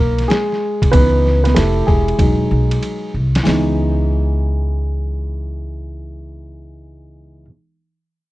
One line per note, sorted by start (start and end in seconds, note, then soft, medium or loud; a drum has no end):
0.00 0.23 B1 medium
0.00 0.26 A#3 medium
0.00 0.30 A#4 medium
0.18 snare soft
0.18 ride medium
0.28 0.89 G#3 medium
0.28 0.94 G#4 medium
0.28 snare medium
0.28 hi-hat pedal soft
0.28 ride soft
0.52 snare soft
0.82 0.91 C2 medium
0.82 kick medium
0.82 ride medium
0.92 1.58 C#2 medium
0.92 1.53 E3 soft
0.92 1.42 B3 medium
0.92 1.53 D#4 medium
0.92 1.41 B4 loud
0.92 kick loud
0.92 ride medium
1.26 snare soft
1.44 1.56 B3 medium
1.44 1.56 B4 medium
1.44 snare soft
1.44 ride medium
1.55 1.81 F1 medium
1.55 1.86 A3 medium
1.55 2.16 E4 medium
1.55 2.16 G4 soft
1.55 1.88 A4 medium
1.55 snare medium
1.55 hi-hat pedal soft
1.55 ride medium
1.87 2.13 E1 medium
1.87 2.19 G#3 medium
1.87 3.09 G#4 medium
1.87 kick medium
2.08 ride soft
2.19 2.44 E1 medium
2.19 3.10 F#3 soft
2.19 3.10 G#3 soft
2.19 3.11 D#4 medium
2.19 kick medium
2.19 ride medium
2.51 2.76 B1 medium
2.71 ride medium
2.83 hi-hat pedal soft
2.83 ride soft
3.14 3.39 C2 medium
3.35 snare medium
3.35 ride medium
3.43 7.44 C#2 medium
3.43 7.43 E3 medium
3.43 7.44 G#3 medium
3.43 7.44 B3 medium
3.43 snare medium
3.43 open hi-hat medium
3.48 7.45 D#4 medium